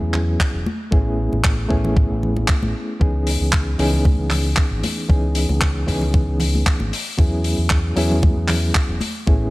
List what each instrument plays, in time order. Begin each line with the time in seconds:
Already playing: reed electric piano F#3 B3 C#4 E4 G#4
0.01 fingered electric bass E2
0.14 clap, low conga
0.40 kick, clap
0.53 fingered electric bass E1
0.66 high conga
0.91 fingered electric bass A1, reed electric piano A3 B3 C#4 E4 G#4, kick
1.32 fingered electric bass A1, high conga
1.44 kick, clap
1.69 fingered electric bass A1, reed electric piano A3 B3 C#4 E4 G#4, kick
1.84 low conga
1.97 kick
2.10 fingered electric bass A1
2.23 low conga
2.37 high conga
2.48 kick, clap
2.62 fingered electric bass A1, high conga
3.00 fingered electric bass C#2, reed electric piano E3 B3 C#4 D#4 G#4, kick
3.27 open hi-hat
3.41 fingered electric bass C#2
3.52 kick, clap
3.78 fingered electric bass C#2, reed electric piano E3 B3 C#4 D#4 G#4, open hi-hat
3.93 low conga
4.05 kick, high conga
4.19 fingered electric bass C#2
4.30 clap, open hi-hat, low conga
4.56 kick, clap
4.71 fingered electric bass G#1
4.84 open hi-hat, high conga
5.09 fingered electric bass C#2, reed electric piano E3 B3 C#4 D#4 G#4, kick
5.35 open hi-hat
5.49 fingered electric bass C#2, high conga
5.61 kick, clap
5.87 fingered electric bass C#2, reed electric piano E3 B3 C#4 D#4 G#4, kick, open hi-hat
6.01 low conga
6.14 kick
6.28 fingered electric bass C#2
6.40 open hi-hat, low conga
6.55 high conga
6.66 kick, clap
6.80 fingered electric bass G#1, high conga
6.93 open hi-hat
7.18 fingered electric bass E2, reed electric piano F#3 B3 C#4 E4 G#4, kick
7.44 open hi-hat
7.58 fingered electric bass E2
7.70 kick, clap
7.96 fingered electric bass E2, reed electric piano F#3 B3 C#4 E4 G#4, open hi-hat
8.12 low conga
8.23 kick, high conga
8.36 fingered electric bass E2
8.48 clap, open hi-hat, low conga
8.75 kick, clap
8.88 fingered electric bass E1
9.01 open hi-hat, high conga
9.27 fingered electric bass A1, reed electric piano A3 B3 C#4 E4 G#4, kick